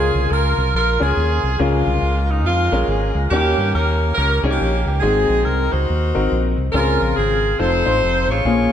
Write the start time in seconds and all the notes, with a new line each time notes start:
Already playing: C#2 C#3 C#4 F4 G#4 A#4 D#5
0.15 C2
0.31 C#2 F4 A#4
0.57 C2
0.74 A#1 F4 A#4
1.00 C#2 C#4 F4 G#4 A#4
1.17 D#2
1.43 C2
1.59 C#2 C#3 G#3 A#3 C#4 F4 G#4 A#4
1.87 C2
2.02 C#2
2.28 D#4
2.45 F2 G#3 A#3 F4
2.72 A#1 C#4 F4 G#4 A#4
2.87 G#1 F4 G#4
3.15 C#2
3.30 D#2 D#3 A#3 C#4 D#4 F#4 G4 A#4
3.37 G4
3.58 G2
3.72 D#2 C#4 G4 A#4
4.14 C#2 C#4 G4 A#4
4.40 C2 C#4 D#4 F#4 G#4 C#5
4.48 A#3 C#4 G4
4.61 A#1
4.84 C#2 G4
5.00 G#1 G#2 C4 D#4 F#4 G#4
5.29 A#1
5.43 C2 A#4
5.69 D#4 F#4 C5
5.73 C#2
5.90 D#2
6.15 G#1 C4 D#4 F#4 A#4
6.32 A#1
6.58 C2
6.72 C#2 C#3 C4 C#4 F4 G#4 A#4
7.01 A#1
7.16 G#1 C4 F4 G#4
7.59 F1 C4 D#4 F4 A4 C5
7.86 A1 C4 D#4 F4 C5
8.03 F1
8.28 A1 F4 G#4 C#5
8.45 A#1 A#2 A#3 C#4 F4 G#4